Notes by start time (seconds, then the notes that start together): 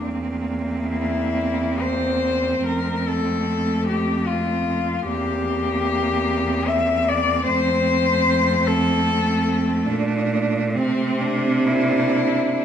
0.03 E2 A#3 C4
0.87 E4
1.81 C5
2.65 F2 A3 A#4
3.08 A4
3.88 G4
4.28 F4
5.08 E2 A#3 C4 G4
6.68 E5
7.09 D5
7.46 F2 A3 C5
8.66 A4
9.88 A#2 D4
10.76 C3 C4
11.20 D4
11.65 A#3 D4 E4